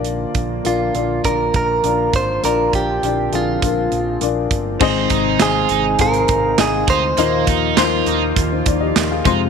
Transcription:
0.00 0.24 A#1 medium
0.00 4.76 D3 medium
0.00 4.76 F3 medium
0.00 0.56 A#3 medium
0.00 2.10 A#3 medium
0.00 0.56 D4 medium
0.00 0.56 F4 medium
0.00 4.76 F4 medium
0.00 0.56 D5 medium
0.05 closed hi-hat medium
0.35 0.59 A#1 medium
0.35 kick medium
0.35 closed hi-hat medium
0.64 0.89 A#1 medium
0.64 0.91 A#3 medium
0.64 0.92 D4 medium
0.64 0.92 F4 medium
0.64 1.21 F4 medium
0.64 0.92 D5 medium
0.64 closed hi-hat medium
0.95 1.19 A#1 medium
0.95 1.21 A#3 medium
0.95 1.22 D4 soft
0.95 1.22 F4 medium
0.95 1.22 D5 medium
0.95 closed hi-hat medium
1.24 1.49 A#1 medium
1.24 1.78 A#3 medium
1.24 1.78 D4 medium
1.24 1.78 F4 medium
1.24 1.55 A#4 medium
1.24 1.79 D5 medium
1.24 kick medium
1.24 closed hi-hat medium
1.54 1.78 A#1 medium
1.54 2.15 A#4 medium
1.54 kick medium
1.54 closed hi-hat medium
1.83 2.08 A#1 medium
1.83 2.37 A#3 medium
1.83 2.37 D4 medium
1.83 2.38 F4 medium
1.83 2.38 D5 medium
1.83 closed hi-hat medium
2.13 2.38 G#1 medium
2.13 4.79 C4 medium
2.13 2.44 C5 medium
2.13 kick medium
2.13 closed hi-hat medium
2.43 2.68 A#1 medium
2.43 2.97 A#3 medium
2.43 2.97 D4 medium
2.43 2.97 F4 medium
2.43 2.72 A#4 medium
2.43 2.98 D5 medium
2.43 closed hi-hat medium
2.73 2.97 A#1 medium
2.73 3.35 G4 medium
2.73 kick medium
2.73 closed hi-hat medium
3.02 3.27 A#1 medium
3.02 3.29 A#3 medium
3.02 3.30 D4 medium
3.02 3.30 F4 medium
3.02 3.30 D5 medium
3.02 closed hi-hat medium
3.32 3.57 A#1 medium
3.32 3.59 A#3 medium
3.32 3.59 D4 medium
3.32 3.60 F4 soft
3.32 4.19 F4 medium
3.32 3.60 G#4 medium
3.32 closed hi-hat medium
3.62 3.87 A#1 medium
3.62 4.16 A#3 medium
3.62 4.16 D4 medium
3.62 4.16 F4 medium
3.62 4.17 A#4 medium
3.62 kick medium
3.62 closed hi-hat medium
3.92 4.16 A#1 medium
3.92 closed hi-hat medium
4.21 4.46 A#1 medium
4.21 4.75 A#3 medium
4.21 4.75 D4 medium
4.21 4.76 F4 medium
4.21 4.76 D5 medium
4.21 closed hi-hat medium
4.51 4.75 G1 medium
4.51 kick medium
4.51 closed hi-hat medium
4.80 5.05 G#1 loud
4.80 5.66 G#2 medium
4.80 7.16 C3 medium
4.80 9.21 D#3 medium
4.80 5.66 D#3 medium
4.80 7.16 G#3 medium
4.80 5.34 C4 loud
4.80 5.09 C4 medium
4.80 5.35 D#4 medium
4.80 7.16 D#4 medium
4.80 5.35 G#4 medium
4.80 5.35 D#5 loud
4.80 kick loud
4.80 crash medium
5.10 5.35 G#1 medium
5.10 5.39 D#4 medium
5.10 kick medium
5.10 closed hi-hat medium
5.40 5.64 G#1 loud
5.40 5.94 C4 medium
5.40 5.94 D#4 medium
5.40 5.68 F4 medium
5.40 5.94 G#4 medium
5.40 6.01 G#4 medium
5.40 5.94 D#5 medium
5.40 snare loud
5.40 clap medium
5.40 closed hi-hat medium
5.69 5.94 G#1 loud
5.69 5.84 D#4 medium
5.69 closed hi-hat medium
5.99 6.24 G#1 medium
5.99 6.53 C4 medium
5.99 6.53 D#4 medium
5.99 6.54 G#4 medium
5.99 6.60 A#4 medium
5.99 6.54 F5 medium
5.99 kick medium
5.99 closed hi-hat medium
6.14 closed hi-hat medium
6.28 6.53 G#1 medium
6.28 kick medium
6.28 closed hi-hat medium
6.58 6.83 G#1 medium
6.58 7.12 C4 medium
6.58 7.12 D#4 medium
6.58 7.13 G#4 medium
6.58 6.90 G#4 medium
6.58 7.13 D#5 medium
6.58 snare loud
6.58 clap medium
6.58 closed hi-hat medium
6.88 7.12 D2 medium
6.88 7.03 D#4 medium
6.88 7.44 C5 loud
6.88 kick loud
6.88 closed hi-hat medium
7.17 7.42 D#2 loud
7.17 8.03 A#2 medium
7.17 9.49 F3 medium
7.17 7.46 A#3 loud
7.17 7.72 A#3 medium
7.17 9.24 A#3 medium
7.17 7.72 D#4 medium
7.17 9.49 F4 medium
7.17 7.72 F4 medium
7.17 7.72 D#5 medium
7.17 closed hi-hat medium
7.47 7.72 D#2 loud
7.47 7.76 D#4 medium
7.47 kick medium
7.47 closed hi-hat medium
7.77 8.01 D#2 loud
7.77 8.31 A#3 loud
7.77 8.31 D#4 medium
7.77 8.05 F4 medium
7.77 8.31 F4 medium
7.77 8.31 C5 loud
7.77 snare loud
7.77 clap medium
7.77 closed hi-hat loud
8.06 8.31 D#2 medium
8.06 8.21 D#4 medium
8.06 closed hi-hat medium
8.36 8.61 D#2 medium
8.36 kick medium
8.36 closed hi-hat medium
8.51 8.66 D#4 soft
8.51 8.65 C5 medium
8.66 8.91 D#2 medium
8.66 8.81 F4 medium
8.66 8.80 D5 medium
8.66 kick loud
8.66 closed hi-hat medium
8.81 9.09 G4 medium
8.81 9.09 D#5 medium
8.96 9.20 D#2 loud
8.96 snare loud
8.96 clap medium
8.96 closed hi-hat medium
9.11 9.39 G#4 medium
9.11 9.39 F5 medium
9.25 9.49 F2 medium
9.25 9.49 C3 medium
9.25 9.49 G#3 medium
9.25 9.49 C4 medium
9.25 9.40 D#4 medium
9.25 9.49 F4 medium
9.25 9.49 C5 loud
9.25 kick loud
9.25 closed hi-hat medium

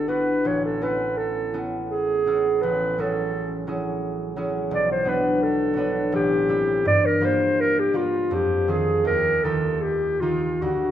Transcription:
0.00 0.48 G1 soft
0.08 0.80 B3 soft
0.08 0.48 D4 soft
0.08 0.81 E4 soft
0.08 0.48 F#4 soft
0.08 0.48 B4 medium
0.45 2.62 A1 soft
0.45 0.64 C#5 medium
0.65 0.84 A4 soft
0.81 1.52 B3 soft
0.81 1.53 C#4 soft
0.81 1.53 E4 soft
0.81 1.54 A4 soft
0.81 1.18 B4 medium
1.17 1.64 A4 medium
1.54 2.25 B3 soft
1.54 2.26 C#4 soft
1.54 2.26 E4 soft
1.54 2.26 A4 soft
1.90 2.63 G#4 medium
2.26 2.66 B3 soft
2.26 2.97 C#4 soft
2.26 2.98 E4 soft
2.26 6.18 A4 soft
2.62 4.75 A1 soft
2.62 3.02 B4 medium
2.98 3.66 F#3 soft
2.98 3.66 C#4 soft
2.98 3.67 E4 soft
2.98 3.67 G#4 soft
2.98 3.68 A4 medium
3.67 4.35 F#3 soft
3.67 4.35 C#4 soft
3.67 4.36 E4 soft
3.67 4.37 G#4 soft
4.36 5.05 F#3 soft
4.36 4.74 C#4 soft
4.36 4.74 E4 soft
4.36 4.75 G#4 soft
4.71 6.15 B1 soft
4.71 4.88 D5 medium
4.91 5.10 C5 medium
5.05 5.73 F#3 soft
5.05 5.75 B3 soft
5.05 5.75 D4 soft
5.05 5.44 B4 medium
5.05 5.76 B4 soft
5.42 6.13 A4 medium
5.73 6.15 F#3 soft
5.73 6.16 B3 soft
5.73 6.16 B4 soft
5.79 6.16 D4 soft
6.12 6.88 A1 soft
6.12 6.85 G4 medium
6.49 7.20 G3 soft
6.49 6.88 C4 soft
6.49 6.88 E4 soft
6.49 7.21 G4 soft
6.85 8.34 G2 soft
6.85 7.07 D5 medium
7.05 7.26 A#4 medium
7.21 7.92 G3 soft
7.21 7.93 A#3 soft
7.21 7.93 F4 soft
7.21 7.93 G4 soft
7.25 7.62 C5 medium
7.60 7.81 A#4 medium
7.79 7.98 G4 medium
7.93 8.34 G3 soft
7.93 8.34 A#3 soft
7.93 8.67 F4 soft
7.93 8.35 F4 medium
7.93 8.35 G4 soft
8.31 9.08 F2 soft
8.31 8.72 G4 medium
8.68 9.08 D#3 soft
8.68 9.09 C4 soft
8.68 9.44 F4 soft
8.68 9.09 G#4 soft
8.68 9.06 G#4 medium
9.05 10.65 D#2 soft
9.05 9.44 A#4 medium
9.43 10.21 D#3 soft
9.43 10.21 D#4 soft
9.43 10.22 F4 soft
9.43 10.21 G4 soft
9.43 9.83 A4 medium
9.82 10.22 G4 medium
10.20 10.66 D#3 soft
10.20 10.66 D#4 soft
10.20 10.63 F4 medium
10.20 10.66 F4 soft
10.20 10.91 G4 soft
10.62 10.91 D2 soft
10.62 10.91 F#4 medium

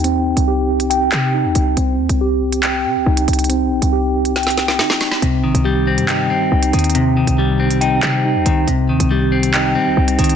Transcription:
0.00 0.34 D#2 loud
0.00 1.33 D#4 medium
0.00 0.47 G4 medium
0.00 0.89 G5 loud
0.04 1.76 C4 medium
0.04 closed hi-hat medium
0.37 1.09 C2 loud
0.37 closed hi-hat medium
0.48 1.77 G4 medium
0.80 closed hi-hat medium
0.90 1.77 G5 loud
0.90 closed hi-hat medium
1.12 1.46 C3 loud
1.12 clap loud
1.12 closed hi-hat medium
1.34 1.77 D#4 medium
1.45 1.55 D#2 loud
1.55 1.76 C2 loud
1.55 closed hi-hat medium
1.77 2.00 C2 loud
1.77 3.48 C4 medium
1.77 closed hi-hat medium
1.99 2.09 D#2 loud
2.09 2.86 C2 loud
2.09 closed hi-hat medium
2.21 3.91 G4 medium
2.52 closed hi-hat medium
2.63 4.35 G5 loud
2.63 clap loud
2.63 closed hi-hat medium
2.85 2.97 C3 loud
2.96 3.06 C2 loud
3.06 3.27 C2 loud
3.06 4.78 D#4 medium
3.17 closed hi-hat medium
3.28 3.73 C2 loud
3.28 closed hi-hat medium
3.33 closed hi-hat medium
3.39 closed hi-hat medium
3.44 closed hi-hat medium
3.49 5.21 C4 medium
3.49 closed hi-hat medium
3.71 3.81 A#1 loud
3.82 4.81 C2 loud
3.82 closed hi-hat medium
3.93 5.22 G4 medium
4.25 closed hi-hat medium
4.36 5.22 G5 loud
4.36 snare medium
4.36 closed hi-hat medium
4.43 snare medium
4.43 closed hi-hat medium
4.50 closed hi-hat medium
4.57 snare medium
4.57 closed hi-hat medium
4.68 snare medium
4.79 5.10 D#3 loud
4.79 5.22 D#4 medium
4.79 snare medium
4.90 snare medium
5.01 snare loud
5.01 closed hi-hat medium
5.12 snare loud
5.22 5.45 C2 loud
5.22 6.30 C3 medium
5.22 6.94 C4 medium
5.22 closed hi-hat medium
5.44 5.54 A#1 loud
5.44 6.52 D#3 medium
5.54 5.99 C2 loud
5.54 closed hi-hat medium
5.65 6.73 G3 loud
5.65 7.37 G4 medium
5.87 6.29 C4 medium
5.98 6.49 G2 loud
5.98 closed hi-hat medium
6.08 7.80 G5 loud
6.08 clap loud
6.08 closed hi-hat medium
6.30 7.38 C4 medium
6.52 6.72 C2 loud
6.52 8.24 D#4 medium
6.63 closed hi-hat medium
6.73 7.25 D#2 loud
6.73 7.16 D#3 medium
6.73 closed hi-hat medium
6.79 closed hi-hat medium
6.84 closed hi-hat medium
6.90 closed hi-hat medium
6.95 8.03 C3 loud
6.95 8.66 C4 loud
6.95 closed hi-hat medium
7.17 8.25 D#3 medium
7.27 8.00 C2 loud
7.27 closed hi-hat medium
7.38 8.46 G3 loud
7.38 8.68 G4 medium
7.60 8.02 C4 medium
7.71 closed hi-hat medium
7.81 8.68 D#4 medium
7.81 8.67 G5 loud
7.81 closed hi-hat medium
8.03 8.37 C3 loud
8.03 8.68 C4 medium
8.03 clap loud
8.03 closed hi-hat medium
8.25 8.68 D#4 medium
8.35 8.45 D#2 loud
8.46 8.67 C2 loud
8.46 8.68 D#3 medium
8.46 closed hi-hat medium
8.67 8.91 C2 loud
8.67 9.75 C3 medium
8.67 10.36 C4 loud
8.67 closed hi-hat medium
8.89 8.99 D#2 loud
8.89 9.97 D#3 medium
9.00 9.77 C2 loud
9.00 closed hi-hat medium
9.11 10.19 G3 medium
9.11 10.36 G4 medium
9.32 9.74 C4 medium
9.43 closed hi-hat medium
9.54 10.36 D#4 loud
9.54 10.36 G5 loud
9.54 clap loud
9.54 closed hi-hat medium
9.75 9.88 C3 loud
9.75 10.36 C4 medium
9.86 9.97 C2 loud
9.97 10.18 C2 loud
9.97 10.36 D#4 medium
10.08 closed hi-hat medium
10.19 10.36 C2 loud
10.19 10.36 D#3 medium
10.19 closed hi-hat medium
10.24 closed hi-hat medium
10.29 closed hi-hat medium

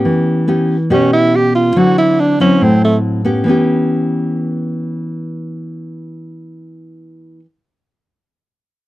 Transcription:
0.00 0.44 B3 medium
0.00 0.44 C#4 medium
0.00 0.45 G4 medium
0.05 0.88 E3 medium
0.47 0.75 B3 medium
0.47 0.75 C#4 medium
0.47 0.75 G4 medium
0.90 1.73 B2 medium
0.90 1.72 B3 medium
0.90 1.72 C#4 medium
0.90 1.12 C#4 medium
0.90 1.72 G4 medium
1.13 1.37 E4 medium
1.36 1.55 G4 medium
1.55 1.79 F4 medium
1.76 2.59 D3 medium
1.76 2.36 F#3 soft
1.76 2.36 C4 medium
1.76 2.36 E4 medium
1.76 1.98 F#4 medium
1.98 2.22 E4 medium
2.20 2.40 D4 medium
2.40 3.21 F#3 medium
2.40 3.21 C4 medium
2.40 2.65 C#4 medium
2.40 3.22 E4 medium
2.61 3.44 A2 medium
2.61 2.83 C4 medium
2.85 2.96 A3 medium
3.25 3.45 B3 medium
3.25 3.47 C#4 medium
3.25 3.48 G4 medium
3.44 7.39 E3 medium
3.44 7.42 B3 medium
3.48 7.43 C#4 medium
3.48 7.45 G4 medium

